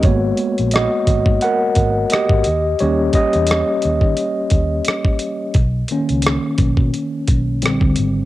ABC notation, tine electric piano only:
X:1
M:4/4
L:1/8
Q:"Swing 16ths" 1/4=87
K:D#phr
V:1 name="Tine electric piano"
[Fc]2 [Fd]2 [Af]2 [=Gd]2 | [=Gc] [Gd]6 z | z8 |]
V:2 name="Tine electric piano"
[G,A,B,]6- [G,A,B,] z | [=G,A,C] z6 z | z [D,A,C]3 z2 [=D,=G,^B,]2 |]